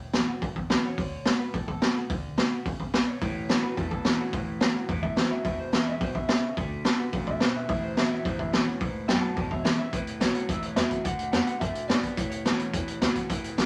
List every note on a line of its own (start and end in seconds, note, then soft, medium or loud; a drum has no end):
0.00 0.40 A2 medium
0.00 muted upright bass stroke medium
0.13 0.26 A1 medium
0.13 0.27 E3 medium
0.13 0.28 A3 medium
0.13 0.28 C#4 loud
0.13 0.27 F#4 medium
0.13 snare loud
0.13 open hi-hat soft
0.28 0.43 C#4 soft
0.28 0.42 F#4 medium
0.28 muted upright bass stroke medium
0.42 0.54 B1 medium
0.42 0.95 E2 medium
0.42 kick loud
0.42 open hi-hat medium
0.56 muted upright bass stroke medium
0.56 kick medium
0.70 0.82 C#2 medium
0.70 0.84 E3 medium
0.70 0.84 A3 medium
0.70 0.84 C#4 medium
0.70 0.84 F#4 loud
0.70 0.84 B4 loud
0.70 snare loud
0.70 open hi-hat soft
0.84 0.99 C#4 medium
0.84 0.98 F#4 medium
0.84 1.39 C#5 loud
0.84 muted upright bass stroke medium
0.98 1.27 D2 medium
0.98 1.25 D3 medium
0.98 kick loud
0.98 open hi-hat medium
1.26 1.39 D3 medium
1.26 1.40 A3 medium
1.26 1.40 B3 medium
1.26 1.38 F#4 loud
1.26 snare loud
1.26 open hi-hat medium
1.39 1.54 B3 soft
1.39 1.53 F#4 medium
1.39 1.54 B4 loud
1.39 muted upright bass stroke medium
1.54 1.84 A1 medium
1.54 2.07 A2 medium
1.54 1.67 A4 loud
1.54 kick loud
1.54 open hi-hat soft
1.68 1.95 A4 loud
1.68 kick medium
1.82 1.95 D3 medium
1.82 1.96 A3 medium
1.82 1.96 B3 loud
1.82 1.96 F#4 loud
1.82 snare loud
1.82 open hi-hat medium
1.96 2.11 B3 medium
1.96 2.10 F#4 medium
1.96 muted upright bass stroke medium
2.10 2.39 D2 medium
2.10 2.36 D3 medium
2.10 kick loud
2.10 open hi-hat medium
2.37 2.51 D3 medium
2.37 2.51 A3 loud
2.37 2.52 B3 medium
2.37 2.50 F#4 loud
2.37 snare loud
2.37 open hi-hat soft
2.52 2.66 B3 soft
2.52 2.65 F#4 medium
2.52 muted upright bass stroke medium
2.66 2.78 C#2 medium
2.66 2.92 C#3 medium
2.66 kick loud
2.66 open hi-hat soft
2.80 muted upright bass stroke medium
2.80 kick medium
2.94 3.06 B1 medium
2.94 3.20 B2 medium
2.94 3.07 B4 loud
2.94 snare loud
2.94 open hi-hat medium
3.07 3.62 C#5 loud
3.07 muted upright bass stroke medium
3.21 3.51 A1 loud
3.21 3.47 A2 medium
3.21 3.75 A2 loud
3.21 3.47 E3 loud
3.21 kick loud
3.21 open hi-hat medium
3.49 3.75 A2 medium
3.49 3.63 E3 loud
3.49 3.75 F#3 loud
3.49 3.63 A3 medium
3.49 3.63 C#4 medium
3.49 3.62 F#4 medium
3.49 snare loud
3.49 open hi-hat medium
3.63 3.78 C#4 medium
3.63 3.77 F#4 medium
3.63 3.77 B4 loud
3.63 muted upright bass stroke medium
3.77 4.07 E2 medium
3.77 4.31 E2 medium
3.77 4.03 A2 medium
3.77 4.03 E3 loud
3.77 3.90 A4 medium
3.77 kick loud
3.77 open hi-hat soft
3.91 4.18 A4 medium
3.91 kick medium
4.05 4.30 A2 medium
4.05 4.19 E3 medium
4.05 4.31 F#3 loud
4.05 4.19 A3 medium
4.05 4.19 C#4 medium
4.05 4.18 F#4 loud
4.05 snare loud
4.05 open hi-hat medium
4.19 4.34 C#4 medium
4.19 4.33 F#4 medium
4.19 muted upright bass stroke medium
4.33 4.63 A1 medium
4.33 4.58 A2 medium
4.33 4.86 A2 loud
4.33 4.58 E3 loud
4.33 kick loud
4.33 open hi-hat medium
4.60 4.86 A2 medium
4.60 4.74 E3 medium
4.60 4.87 F#3 loud
4.60 4.75 A3 loud
4.60 4.75 C#4 loud
4.60 4.74 F#4 medium
4.60 snare loud
4.60 open hi-hat soft
4.75 4.90 C#4 medium
4.75 4.88 F#4 medium
4.75 muted upright bass stroke medium
4.89 5.18 E2 medium
4.89 5.42 E2 medium
4.89 5.14 A2 medium
4.89 5.14 E3 loud
4.89 kick loud
4.89 open hi-hat soft
5.03 5.16 E5 loud
5.03 kick medium
5.16 5.42 A2 medium
5.16 5.30 E3 medium
5.16 5.42 F#3 loud
5.16 5.31 A3 medium
5.16 5.31 C#4 medium
5.16 5.29 F#4 medium
5.16 5.31 C5 loud
5.16 snare loud
5.16 open hi-hat medium
5.31 5.45 C#4 medium
5.31 5.44 F#4 medium
5.31 5.44 E5 loud
5.31 muted upright bass stroke medium
5.44 5.74 E1 medium
5.44 5.70 E2 medium
5.44 5.98 E2 loud
5.44 5.70 B2 medium
5.44 5.59 E5 loud
5.44 kick loud
5.44 open hi-hat medium
5.59 5.73 C5 medium
5.72 5.98 E2 medium
5.72 5.98 C#3 medium
5.72 5.99 E3 medium
5.72 6.00 G#3 medium
5.72 6.00 C#4 loud
5.72 6.00 E4 loud
5.72 5.87 E5 loud
5.72 snare loud
5.72 open hi-hat medium
5.87 6.01 E5 loud
5.87 muted upright bass stroke medium
6.01 6.30 B1 medium
6.01 6.26 E2 medium
6.01 6.28 B2 loud
6.01 6.26 B2 medium
6.01 6.15 C5 loud
6.01 kick loud
6.01 open hi-hat medium
6.15 6.27 E5 medium
6.15 kick medium
6.28 6.54 E2 medium
6.28 6.55 C#3 medium
6.28 6.55 C#3 loud
6.28 6.56 E5 loud
6.28 snare loud
6.28 open hi-hat medium
6.43 muted upright bass stroke medium
6.57 6.86 D2 medium
6.57 6.82 D3 medium
6.57 6.83 D3 medium
6.57 6.82 A3 medium
6.57 kick loud
6.57 open hi-hat medium
6.84 6.98 D3 medium
6.84 7.10 D3 medium
6.84 6.99 A3 loud
6.84 7.11 B3 medium
6.84 6.99 B3 loud
6.84 6.97 F#4 medium
6.84 snare loud
6.84 open hi-hat medium
6.98 7.13 B3 soft
6.98 7.12 F#4 medium
6.98 muted upright bass stroke medium
7.13 7.43 A1 medium
7.13 7.39 C#3 loud
7.13 7.38 D3 medium
7.13 7.38 A3 medium
7.13 kick loud
7.13 open hi-hat soft
7.27 7.41 E5 loud
7.27 kick medium
7.40 7.68 B2 medium
7.40 7.66 D3 medium
7.40 7.67 B3 loud
7.40 7.55 C5 medium
7.40 snare loud
7.40 open hi-hat soft
7.54 7.69 E5 medium
7.54 muted upright bass stroke medium
7.69 7.98 A1 medium
7.69 8.22 A2 medium
7.69 7.94 A2 medium
7.69 7.94 E3 medium
7.69 7.83 E5 loud
7.69 kick loud
7.69 open hi-hat medium
7.84 7.97 C5 loud
7.97 8.22 A2 medium
7.97 8.24 E3 medium
7.97 8.23 F#3 medium
7.97 8.24 A3 medium
7.97 8.24 C#4 loud
7.97 8.25 F#4 loud
7.97 8.11 E5 loud
7.97 snare loud
7.97 open hi-hat medium
8.11 8.25 E5 loud
8.11 muted upright bass stroke medium
8.25 8.35 E1 medium
8.25 8.78 E2 medium
8.25 8.50 A2 medium
8.25 8.50 E3 loud
8.25 8.38 C5 loud
8.25 kick loud
8.25 open hi-hat medium
8.39 8.53 E5 loud
8.39 muted upright bass stroke medium
8.39 kick medium
8.53 8.65 A1 medium
8.53 8.78 A2 medium
8.53 8.66 E3 medium
8.53 8.78 F#3 loud
8.53 8.67 A3 medium
8.53 8.67 C#4 medium
8.53 8.65 F#4 medium
8.53 8.80 C#5 loud
8.53 snare loud
8.53 open hi-hat medium
8.67 8.81 C#4 medium
8.67 8.80 F#4 medium
8.67 muted upright bass stroke medium
8.80 8.93 G#1 medium
8.80 9.07 G#2 medium
8.80 9.06 A2 medium
8.80 9.06 E3 loud
8.80 kick loud
8.80 open hi-hat medium
8.95 muted upright bass stroke medium
9.08 9.21 F#1 medium
9.08 9.35 F#2 medium
9.08 9.34 A2 medium
9.08 9.34 F#3 loud
9.08 9.21 F#5 loud
9.08 9.22 A5 loud
9.08 snare loud
9.08 open hi-hat medium
9.22 9.36 F#5 medium
9.22 9.35 A5 loud
9.22 muted upright bass stroke medium
9.36 9.66 E1 loud
9.36 9.90 E2 medium
9.36 9.62 E2 medium
9.36 9.62 B2 loud
9.36 9.49 C#5 medium
9.36 9.50 A5 loud
9.36 kick loud
9.36 open hi-hat soft
9.50 9.63 C#5 medium
9.50 9.63 E5 medium
9.50 kick medium
9.64 9.90 C#3 loud
9.64 9.78 E3 medium
9.64 9.78 G#3 loud
9.64 9.79 C#4 medium
9.64 9.77 E4 medium
9.64 9.77 C#5 medium
9.64 9.78 E5 medium
9.64 snare loud
9.64 open hi-hat medium
9.78 9.93 C#4 medium
9.78 9.92 E4 medium
9.78 9.93 E5 loud
9.78 muted upright bass stroke medium
9.93 10.06 A1 medium
9.93 10.18 A2 medium
9.93 10.47 A2 medium
9.93 10.18 E3 medium
9.93 10.22 B4 medium
9.93 kick loud
9.93 closed hi-hat medium
10.06 muted upright bass stroke medium
10.06 closed hi-hat medium
10.20 10.34 B1 loud
10.20 10.46 A2 medium
10.20 10.34 E3 medium
10.20 10.47 F#3 loud
10.20 10.35 A3 loud
10.20 10.35 C#4 medium
10.20 10.33 F#4 loud
10.20 10.34 C#5 loud
10.20 snare loud
10.20 closed hi-hat medium
10.35 10.49 C#4 soft
10.35 10.48 F#4 medium
10.35 10.50 C#5 loud
10.35 muted upright bass stroke medium
10.35 closed hi-hat medium
10.49 10.62 C#2 medium
10.49 11.02 E2 medium
10.49 10.74 A2 medium
10.49 10.74 E3 medium
10.49 10.63 E5 loud
10.49 kick loud
10.49 closed hi-hat medium
10.62 10.77 C#5 medium
10.62 muted upright bass stroke medium
10.62 closed hi-hat medium
10.76 10.90 E2 medium
10.76 11.02 A2 medium
10.76 10.90 E3 medium
10.76 11.03 F#3 medium
10.76 10.91 A3 medium
10.76 10.91 C#4 medium
10.76 10.89 F#4 medium
10.76 11.03 E5 loud
10.76 snare loud
10.76 closed hi-hat medium
10.90 11.05 C#4 medium
10.90 11.04 F#4 medium
10.90 muted upright bass stroke medium
10.90 kick medium
10.90 closed hi-hat medium
11.04 11.18 D2 medium
11.04 11.30 D3 medium
11.04 11.31 D3 loud
11.04 11.31 A3 medium
11.04 11.31 F#5 loud
11.04 kick loud
11.04 closed hi-hat medium
11.19 muted upright bass stroke medium
11.19 closed hi-hat medium
11.32 11.47 F2 medium
11.32 11.46 D3 medium
11.32 11.59 D3 medium
11.32 11.47 A3 medium
11.32 11.47 B3 medium
11.32 11.59 B3 medium
11.32 11.46 F#4 loud
11.32 11.45 F#5 loud
11.32 snare loud
11.32 closed hi-hat medium
11.47 11.61 B3 soft
11.47 11.61 F#4 medium
11.47 11.60 F#5 loud
11.47 muted upright bass stroke medium
11.47 closed hi-hat medium
11.60 11.75 F#2 medium
11.60 12.14 A2 medium
11.60 11.87 D3 medium
11.60 11.87 A3 medium
11.60 11.88 E5 loud
11.60 kick loud
11.60 closed hi-hat medium
11.75 muted upright bass stroke medium
11.75 closed hi-hat medium
11.88 12.03 G#2 medium
11.88 12.02 D3 medium
11.88 12.15 D3 medium
11.88 12.03 A3 medium
11.88 12.03 B3 loud
11.88 12.15 B3 medium
11.88 12.02 F#4 medium
11.88 12.17 D5 loud
11.88 snare loud
11.88 closed hi-hat medium
12.03 12.17 B3 soft
12.03 12.17 F#4 medium
12.03 muted upright bass stroke medium
12.03 kick medium
12.03 closed hi-hat medium
12.17 12.31 A2 medium
12.17 12.71 A2 medium
12.17 12.43 A2 medium
12.17 12.43 E3 loud
12.17 12.29 C#5 medium
12.17 kick loud
12.17 closed hi-hat medium
12.30 12.44 C#5 medium
12.30 muted upright bass stroke medium
12.30 closed hi-hat medium
12.45 12.59 F#2 loud
12.45 12.71 A2 medium
12.45 12.72 E3 medium
12.45 12.71 F#3 loud
12.45 12.72 A3 loud
12.45 12.72 C#4 loud
12.45 12.73 F#4 loud
12.45 12.98 C#5 medium
12.45 snare loud
12.45 closed hi-hat medium
12.59 muted upright bass stroke soft
12.59 closed hi-hat medium
12.73 12.86 E2 medium
12.73 13.27 E2 medium
12.73 12.99 A2 medium
12.73 12.99 E3 medium
12.73 kick loud
12.73 closed hi-hat medium
12.87 muted upright bass stroke medium
12.87 closed hi-hat medium
13.01 13.15 D2 loud
13.01 13.27 A2 medium
13.01 13.15 E3 medium
13.01 13.27 F#3 medium
13.01 13.16 A3 medium
13.01 13.16 C#4 medium
13.01 13.15 F#4 medium
13.01 snare loud
13.01 closed hi-hat medium
13.16 13.30 C#4 medium
13.16 13.29 F#4 medium
13.16 muted upright bass stroke medium
13.16 kick medium
13.16 closed hi-hat medium
13.29 13.55 A2 medium
13.29 13.66 A2 medium
13.29 13.55 E3 medium
13.29 kick loud
13.29 closed hi-hat loud
13.44 closed hi-hat medium
13.57 13.66 B1 medium
13.57 13.66 A2 medium
13.57 13.66 E3 medium
13.57 13.66 F#3 medium
13.57 13.66 A3 medium
13.57 13.66 C#4 loud
13.57 13.66 F#4 loud
13.57 snare loud
13.57 closed hi-hat medium